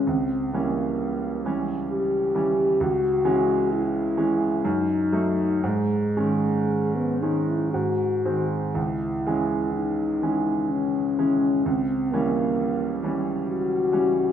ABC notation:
X:1
M:3/4
L:1/16
Q:1/4=64
K:C#m
V:1 name="French horn"
^B,2 ^A,4 z2 =G4 | F4 E4 D4 | G,4- G, B, D E F3 z | E4 D4 C4 |
^B,2 ^A,4 z2 F4 |]
V:2 name="Grand piano" clef=bass
C,,2 [E,=G,C]4 [E,G,C]4 [E,G,C]2 | C,,2 [E,G,C]4 [E,G,C]2 F,,2 [F,A,D]2 | G,,2 [D,G,C]4 [D,G,C]2 G,,2 [D,G,^B,]2 | C,,2 [E,G,C]4 [E,G,C]4 [E,G,C]2 |
C,,2 [E,=G,C]4 [E,G,C]4 [E,G,C]2 |]